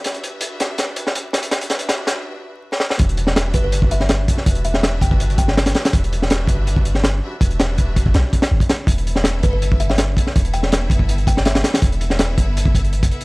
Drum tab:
HH |xxx-x-x-x-x-x-xx|xxxxx-x---------|xxx-x-x-x-x-x-x-|xxx-x-x-xxx-xxxx|
SD |o-----o-o--o--o-|o-o-o-o------ooo|---oo------oo--o|---oo------ooooo|
BD |----------------|----------------|o-----o--o----o-|o-----oo--o-----|

HH |xxx-x-x-x-x-x---|xxx-x-x-x-xx-xx-|xxx-x-x-x-x-x-x-|xxx-x-x-xxx-xxxx|
SD |---oo------oo---|--o-----o--o--o-|---oo------oo--o|---oo------ooooo|
BD |o-----o--o------|o---o-oo--o--o--|o-----o--o----o-|o-----oo--o-----|

HH |xxx-x-x-x-xxxxxx|
SD |---oo-----------|
BD |o-----o--oo--o--|